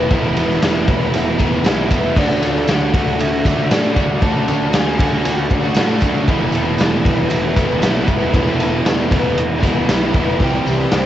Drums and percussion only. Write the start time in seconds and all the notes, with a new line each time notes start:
0.00 tambourine
0.11 kick, ride, tambourine
0.26 tambourine
0.37 ride, tambourine
0.50 snare, tambourine
0.62 snare, ride, tambourine
0.76 tambourine
0.88 kick, ride, tambourine
1.01 tambourine
1.13 ride, tambourine
1.27 tambourine
1.38 kick, ride, tambourine
1.52 tambourine
1.64 snare, ride, tambourine
1.78 tambourine
1.90 kick, ride, tambourine
2.03 tambourine
2.17 kick, crash, tambourine
2.30 tambourine
2.42 ride, tambourine
2.56 snare
2.68 snare, ride, tambourine
2.94 kick, ride
3.07 tambourine
3.20 ride, tambourine
3.45 kick, ride, tambourine
3.58 tambourine
3.71 snare, ride, tambourine
3.85 tambourine
3.96 kick, ride, tambourine
4.10 tambourine
4.22 kick, ride, tambourine
4.35 tambourine
4.48 ride, tambourine
4.73 snare, ride, tambourine
4.99 kick, ride
5.12 tambourine
5.25 ride, tambourine
5.50 kick, ride, tambourine
5.62 tambourine
5.75 snare, ride, tambourine
5.88 tambourine
6.00 kick, ride, tambourine
6.14 tambourine
6.27 kick, ride, tambourine
6.40 tambourine
6.52 ride, tambourine
6.78 snare, ride, tambourine
7.05 kick, ride
7.30 ride, tambourine
7.56 kick, ride, tambourine
7.69 tambourine
7.82 snare, ride, tambourine
7.95 tambourine
8.07 kick, ride, tambourine
8.20 tambourine
8.34 kick, ride, tambourine
8.48 tambourine
8.60 ride, tambourine
8.86 snare, ride, tambourine
8.99 tambourine
9.11 kick, ride, tambourine
9.38 ride, tambourine
9.51 tambourine
9.63 kick, ride, tambourine
9.89 snare, ride, tambourine
10.14 kick, ride
10.28 tambourine
10.40 kick, open hi-hat, tambourine
10.66 open hi-hat, tambourine
10.79 snare
10.91 snare, open hi-hat, tambourine